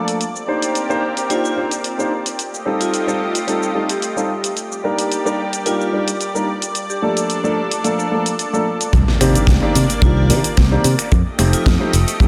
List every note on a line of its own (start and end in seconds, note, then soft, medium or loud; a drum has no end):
0.00 0.19 F3 medium
0.00 0.19 A3 medium
0.00 0.19 A#3 medium
0.00 0.19 D4 medium
0.00 0.19 A4 medium
0.00 2.35 D5 medium
0.08 closed hi-hat medium
0.08 shaker medium
0.20 2.36 C4 medium
0.20 2.36 G4 medium
0.20 2.37 A#4 medium
0.20 closed hi-hat soft
0.20 shaker soft
0.36 shaker soft
0.47 0.86 A#3 medium
0.47 0.86 D4 medium
0.47 0.86 D#4 medium
0.47 0.86 G4 medium
0.47 0.86 C5 medium
0.62 closed hi-hat medium
0.62 shaker medium
0.75 closed hi-hat soft
0.75 shaker medium
0.89 1.01 A#3 medium
0.89 1.01 D4 medium
0.89 1.01 D#4 medium
0.89 1.01 G4 medium
0.89 1.01 C5 loud
0.89 shaker soft
1.17 closed hi-hat medium
1.17 shaker medium
1.29 1.49 A#3 medium
1.29 1.50 D4 medium
1.29 1.50 D#4 medium
1.29 1.39 F4 medium
1.29 1.50 G4 medium
1.29 1.50 C5 medium
1.29 closed hi-hat soft
1.29 shaker medium
1.44 1.52 F4 medium
1.44 shaker soft
1.56 1.69 A#3 medium
1.56 1.70 D4 medium
1.56 1.70 D#4 medium
1.56 1.70 G4 medium
1.56 1.70 C5 medium
1.71 closed hi-hat medium
1.71 shaker medium
1.84 closed hi-hat soft
1.84 shaker soft
1.98 2.10 A#3 medium
1.98 2.10 D4 medium
1.98 2.10 D#4 medium
1.98 2.10 G4 medium
1.98 2.10 C5 medium
1.98 shaker soft
2.26 closed hi-hat medium
2.26 shaker medium
2.38 4.54 A3 medium
2.38 4.55 F4 medium
2.38 4.55 G4 medium
2.38 4.54 D#5 medium
2.38 closed hi-hat soft
2.38 shaker medium
2.54 shaker soft
2.65 3.04 G3 medium
2.65 3.04 C4 medium
2.65 3.04 D#4 medium
2.65 3.04 F4 medium
2.65 3.04 A4 medium
2.81 3.35 F4 medium
2.81 closed hi-hat medium
2.81 shaker medium
2.94 closed hi-hat soft
2.94 shaker medium
3.07 3.19 G3 medium
3.07 3.19 C4 medium
3.07 3.19 D#4 medium
3.07 3.19 F4 medium
3.07 3.19 A4 medium
3.07 shaker soft
3.35 closed hi-hat medium
3.35 shaker medium
3.47 3.67 G3 medium
3.47 3.68 C4 medium
3.47 3.68 D#4 medium
3.47 3.68 F4 medium
3.47 3.68 A4 medium
3.47 closed hi-hat soft
3.47 shaker medium
3.63 shaker soft
3.74 3.88 G3 medium
3.74 3.88 C4 medium
3.74 3.88 D#4 medium
3.74 3.88 F4 medium
3.74 3.88 A4 medium
3.89 4.63 G4 medium
3.89 closed hi-hat medium
3.89 shaker medium
4.02 closed hi-hat soft
4.02 shaker medium
4.16 4.28 G3 medium
4.16 4.28 C4 medium
4.16 4.28 D#4 medium
4.16 4.28 F4 medium
4.16 4.28 A4 medium
4.16 shaker soft
4.44 closed hi-hat medium
4.44 shaker medium
4.57 6.73 G3 medium
4.57 6.73 G4 medium
4.57 8.89 D5 medium
4.57 closed hi-hat soft
4.57 shaker medium
4.72 shaker soft
4.84 5.22 G3 medium
4.84 5.22 A#3 medium
4.84 5.22 D4 medium
4.84 5.23 D#4 medium
4.84 5.23 A#4 medium
4.99 closed hi-hat medium
4.99 shaker medium
5.12 closed hi-hat soft
5.12 shaker medium
5.25 5.37 G3 medium
5.25 5.37 A#3 medium
5.25 5.37 D4 medium
5.25 5.37 D#4 medium
5.25 5.38 A#4 loud
5.25 shaker soft
5.53 closed hi-hat medium
5.53 shaker medium
5.65 5.86 G3 medium
5.65 5.86 A#3 medium
5.65 5.86 D4 medium
5.65 5.86 D#4 medium
5.65 5.75 F4 medium
5.65 5.86 A#4 medium
5.65 closed hi-hat soft
5.65 shaker medium
5.81 5.89 F4 medium
5.81 shaker soft
5.93 6.06 G3 medium
5.93 6.06 A#3 medium
5.93 6.06 D4 medium
5.93 6.06 D#4 medium
5.93 6.06 A#4 medium
6.08 6.30 G4 medium
6.08 closed hi-hat medium
6.08 shaker medium
6.21 closed hi-hat soft
6.21 shaker medium
6.34 6.46 G3 medium
6.34 6.46 A#3 medium
6.34 6.46 D4 medium
6.34 6.47 D#4 medium
6.34 6.47 A#4 medium
6.34 shaker soft
6.62 closed hi-hat medium
6.62 shaker medium
6.75 8.91 D4 medium
6.75 8.91 A4 medium
6.75 closed hi-hat soft
6.75 shaker medium
6.90 7.66 G4 medium
6.90 shaker soft
7.02 7.40 F3 medium
7.02 7.40 A3 medium
7.02 7.41 A#3 medium
7.02 7.41 D4 medium
7.02 7.41 A4 medium
7.17 closed hi-hat medium
7.17 shaker medium
7.30 closed hi-hat medium
7.30 shaker medium
7.44 7.55 F3 medium
7.44 7.55 A3 medium
7.44 7.55 A#3 medium
7.44 7.56 D4 medium
7.44 7.56 A4 medium
7.44 shaker soft
7.71 closed hi-hat medium
7.71 shaker medium
7.84 8.04 F3 medium
7.84 8.04 A3 medium
7.84 8.04 A#3 medium
7.84 8.04 D4 medium
7.84 8.04 A4 medium
7.84 closed hi-hat soft
7.84 shaker medium
8.00 shaker soft
8.11 8.24 F3 medium
8.11 8.24 A3 medium
8.11 8.24 A#3 medium
8.11 8.24 D4 medium
8.11 8.25 A4 medium
8.26 closed hi-hat medium
8.26 shaker medium
8.39 closed hi-hat soft
8.39 shaker medium
8.53 8.65 F3 medium
8.53 8.65 A3 medium
8.53 8.65 A#3 medium
8.53 8.65 D4 medium
8.53 8.65 A4 medium
8.53 shaker soft
8.81 closed hi-hat medium
8.81 shaker medium
8.93 9.03 C2 medium
8.93 11.09 A#3 medium
8.93 11.09 D4 medium
8.93 11.09 D5 medium
8.93 kick loud
8.93 closed hi-hat medium
8.93 impact medium
8.93 shaker soft
9.08 snare soft
9.20 9.35 C3 medium
9.20 9.59 D#3 medium
9.20 9.59 A#3 medium
9.20 9.59 C4 medium
9.20 9.59 D4 medium
9.20 9.59 G4 medium
9.20 finger snap medium
9.20 open hi-hat loud
9.20 shaker medium
9.35 muted picked electric bass stroke soft
9.35 closed hi-hat medium
9.35 shaker soft
9.47 9.57 C2 loud
9.47 kick loud
9.47 snare loud
9.47 closed hi-hat medium
9.47 shaker soft
9.62 9.74 D#3 loud
9.62 9.74 A#3 medium
9.62 9.74 C4 medium
9.62 9.74 D4 medium
9.62 9.74 G4 loud
9.75 9.85 C3 medium
9.75 open hi-hat loud
9.75 shaker medium
9.90 closed hi-hat medium
9.90 shaker soft
10.02 10.32 C2 medium
10.02 10.22 D#3 medium
10.02 10.22 A#3 medium
10.02 10.22 C4 medium
10.02 10.22 D4 medium
10.02 10.11 F4 medium
10.02 10.23 G4 loud
10.02 kick loud
10.02 closed hi-hat medium
10.17 10.25 F4 medium
10.29 10.40 C3 medium
10.29 10.42 D#3 medium
10.29 10.43 A#3 medium
10.29 10.43 C4 medium
10.29 10.43 D4 medium
10.29 10.43 G4 medium
10.29 open hi-hat loud
10.29 shaker medium
10.44 muted picked electric bass stroke soft
10.44 closed hi-hat medium
10.44 shaker soft
10.57 10.76 C2 medium
10.57 kick loud
10.57 snare loud
10.57 closed hi-hat medium
10.57 shaker soft
10.71 10.83 D#3 medium
10.71 10.83 A#3 medium
10.71 10.83 C4 medium
10.71 10.83 D4 medium
10.71 10.83 G4 loud
10.84 10.94 C3 medium
10.84 open hi-hat loud
10.84 shaker medium
10.99 finger snap medium
10.99 closed hi-hat medium
10.99 shaker soft
11.12 11.21 F2 loud
11.12 12.28 A3 medium
11.12 12.28 G4 medium
11.12 12.28 D#5 medium
11.12 kick loud
11.12 closed hi-hat medium
11.12 shaker soft
11.38 11.53 F1 medium
11.38 11.77 F3 medium
11.38 11.77 A3 medium
11.38 11.77 C4 medium
11.38 11.77 D#4 medium
11.38 11.77 G4 medium
11.38 finger snap medium
11.38 open hi-hat loud
11.38 shaker medium
11.53 12.08 F4 medium
11.53 muted picked electric bass stroke soft
11.53 closed hi-hat medium
11.53 shaker soft
11.66 11.76 F2 loud
11.66 kick loud
11.66 snare loud
11.66 closed hi-hat medium
11.66 shaker soft
11.80 11.92 F3 loud
11.80 11.92 A3 medium
11.80 11.92 C4 medium
11.80 11.92 D#4 medium
11.80 11.92 G4 loud
11.93 12.03 F1 medium
11.93 open hi-hat loud
11.93 shaker medium
12.08 closed hi-hat medium
12.08 shaker soft
12.20 12.28 F2 medium
12.20 12.28 F3 medium
12.20 12.28 A3 medium
12.20 12.28 C4 medium
12.20 12.28 D#4 medium
12.20 12.28 G4 loud
12.20 kick loud
12.20 closed hi-hat medium
12.20 shaker soft